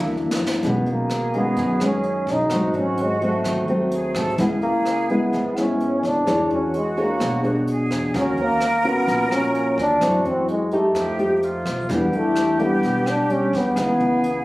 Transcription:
Already playing: upright bass D2, nylon-string guitar F#2 E3 A#3 D4, trombone A#3, flute section E4
0.00 mid tom
0.16 kick
0.31 snare
0.40 upright bass F#1
0.46 snare
0.62 upright bass B1, nylon-string guitar B2 D#3 G#3 C#4, flute section G#4, kick, closed hi-hat
0.67 trombone B3
0.86 upright bass B1, closed hi-hat
0.91 trombone A#3
1.10 cross-stick, closed hi-hat
1.33 nylon-string guitar D#3 G#3 C#4, closed hi-hat
1.39 trombone B3
1.57 upright bass F#2, nylon-string guitar F#2, kick, closed hi-hat
1.80 nylon-string guitar D#3 G#3 C#4, cross-stick, closed hi-hat
1.85 trombone C#4
2.03 closed hi-hat
2.27 upright bass B1, kick, closed hi-hat
2.33 trombone D#4
2.50 upright bass G#1, nylon-string guitar G#2 F#3 A3 C4, flute section F#4, kick, cross-stick, closed hi-hat
2.73 upright bass G#1, closed hi-hat
2.79 trombone C#4
2.97 closed hi-hat
3.03 trombone G#3
3.21 nylon-string guitar F#3 A3 C4, trombone A3, closed hi-hat
3.44 upright bass D#2, nylon-string guitar D#3, kick, cross-stick, closed hi-hat
3.68 nylon-string guitar F#3 A3 C4, closed hi-hat
3.91 flute section G#4, closed hi-hat
4.15 upright bass G#1, flute section A4, kick, cross-stick, closed hi-hat
4.38 upright bass C#2, nylon-string guitar C#3 G#3 E4, trombone B3, flute section G#4, kick, closed hi-hat
4.62 upright bass C#2, trombone A#3, closed hi-hat
4.86 cross-stick, closed hi-hat
5.09 nylon-string guitar G#3 B3 E4, trombone B3, closed hi-hat
5.33 upright bass G#1, nylon-string guitar G#2, kick, closed hi-hat
5.57 nylon-string guitar G#3 B3 E4, trombone C#4, cross-stick, closed hi-hat
5.80 closed hi-hat
6.03 upright bass C#2, trombone D4, kick, closed hi-hat
6.25 upright bass E2, nylon-string guitar E3 D4 G#4 C#5, flute section F#4, kick, cross-stick, closed hi-hat
6.50 upright bass E2, trombone C#4, closed hi-hat
6.74 trombone G#3, closed hi-hat
6.97 trombone A#3, nylon-string guitar D4 G#4 C#5, closed hi-hat
7.20 upright bass B1, nylon-string guitar B2, kick, cross-stick, closed hi-hat
7.44 nylon-string guitar D4 G#4 C#5, closed hi-hat
7.67 flute section G#4, closed hi-hat
7.91 upright bass E2, kick, cross-stick, closed hi-hat
8.14 upright bass D#2, nylon-string guitar D#3 A#3 C#4 F#4, flute section A#4, kick, closed hi-hat
8.19 trombone C#4
8.37 upright bass D#2, closed hi-hat
8.42 trombone A#3
8.61 cross-stick, closed hi-hat
8.84 trombone B3, nylon-string guitar C#4 F#4, closed hi-hat
9.08 upright bass A#1, nylon-string guitar A#2, kick, closed hi-hat
9.31 nylon-string guitar A#3 C#4 F#4, trombone C#4, cross-stick, closed hi-hat
9.55 closed hi-hat
9.78 upright bass D#2, trombone D4, kick, closed hi-hat
10.01 nylon-string guitar F#2 E3 A3 C4, upright bass F#2, flute section F#4, kick, cross-stick, closed hi-hat
10.25 upright bass F#2, trombone C4, closed hi-hat
10.48 trombone G#3, closed hi-hat
10.71 nylon-string guitar A3 D#4 G4, trombone A3, closed hi-hat
10.95 upright bass F2, nylon-string guitar F3, flute section G4, kick, cross-stick, closed hi-hat
11.19 nylon-string guitar A3 D#4 G4, closed hi-hat
11.35 flute section G4
11.43 flute section F4, closed hi-hat
11.65 upright bass B1, kick, cross-stick, closed hi-hat
11.89 upright bass E2, nylon-string guitar E3 G3 D4, flute section G4, kick, closed hi-hat
11.94 trombone B3
12.13 upright bass E2, trombone A3, closed hi-hat
12.36 cross-stick, closed hi-hat
12.59 nylon-string guitar G3 D4, trombone B3, closed hi-hat
12.83 upright bass B1, nylon-string guitar B2, kick, closed hi-hat
13.06 trombone D4, cross-stick, closed hi-hat
13.30 nylon-string guitar G3 D4, trombone C#4, closed hi-hat
13.53 upright bass E2, trombone B3, kick, closed hi-hat
13.75 upright bass C#2, nylon-string guitar C#3 E3 B3 D#4, flute section G#4, kick, cross-stick, closed hi-hat
14.00 upright bass C#2, closed hi-hat
14.24 closed hi-hat

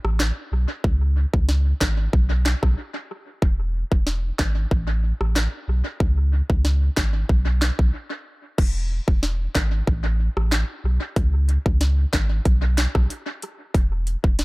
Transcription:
0.04 sub bass A1, cross-stick
0.20 snare, clap
0.52 sub bass B1
0.84 sub bass C#2, kick
1.34 sub bass C#2, kick
1.49 snare
1.81 sub bass G#1, kick, snare, clap
2.13 sub bass B1, kick
2.46 snare, clap
2.63 sub bass B1, kick, cross-stick
3.42 sub bass E1, kick
3.92 sub bass E1, kick
4.07 snare
4.39 sub bass G#1, kick, snare, clap
4.71 sub bass A1, kick
5.21 sub bass A1, cross-stick
5.36 snare, clap
5.68 sub bass B1
6.00 sub bass C#2, kick
6.50 sub bass C#2, kick
6.65 snare
6.97 sub bass G#1, kick, snare, clap
7.29 sub bass B1, kick
7.62 snare, clap
7.79 sub bass B1, kick
8.58 sub bass E1, kick, crash
9.08 sub bass E1, kick
9.23 snare
9.55 sub bass G#1, kick, snare, clap
9.87 sub bass A1, kick
10.37 sub bass A1, cross-stick
10.52 snare, clap
10.84 sub bass B1
11.16 sub bass C#2, kick, closed hi-hat
11.49 closed hi-hat
11.66 sub bass C#2, kick
11.81 snare, closed hi-hat
12.13 sub bass G#1, kick, snare, clap, closed hi-hat
12.45 sub bass B1, kick, closed hi-hat
12.77 snare, clap, closed hi-hat
12.95 sub bass B1, kick, cross-stick
13.10 closed hi-hat
13.42 closed hi-hat
13.74 sub bass E1, kick, closed hi-hat
14.07 closed hi-hat
14.24 sub bass E1, kick
14.39 snare, closed hi-hat

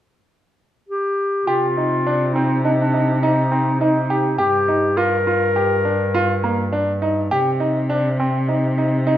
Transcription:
0.89 clarinet G4
1.47 cello C3, clarinet F4, grand piano G4
1.77 grand piano D#4
2.07 grand piano D4
2.33 grand piano C4, clarinet D#4
2.63 clarinet D4, grand piano D#4
2.78 clarinet D4
2.93 grand piano D#4
3.22 clarinet D#4, grand piano D#4
3.52 grand piano C4
3.79 clarinet D#4, grand piano D#4
4.10 grand piano G4
4.38 cello G2, grand piano G4, clarinet G4
4.68 grand piano D#4
4.97 grand piano F4, clarinet A#4
5.27 grand piano F4
5.56 grand piano G4
5.85 grand piano D4
6.15 grand piano F4
6.44 grand piano A#3
6.73 grand piano D4
7.02 grand piano D#4
7.31 cello C3, grand piano G4
7.60 grand piano D#4
7.90 grand piano D4
8.20 grand piano C4
8.48 grand piano D#4
8.78 grand piano D#4
9.07 grand piano D#4

